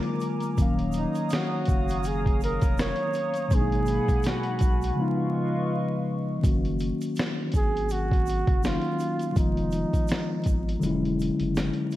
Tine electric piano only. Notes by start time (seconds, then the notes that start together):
Already playing: D3 F#3 G#3 A#3 F4
0.56 D#3 F#3 A#3
0.60 C#4 F5
3.48 B2 F#3 G#3
3.53 A#3 D4
3.61 D#4
4.95 C#3 F3 G#3
4.99 B3 D#4
6.40 D#3 F#3 A#3
6.44 C#4 F#4
8.62 D#3 F#3 A#3 C#4 D#4
9.32 D#3 F3 G#3
9.37 B3 F4
10.79 D3 F#3 G#3
10.84 C#4 E4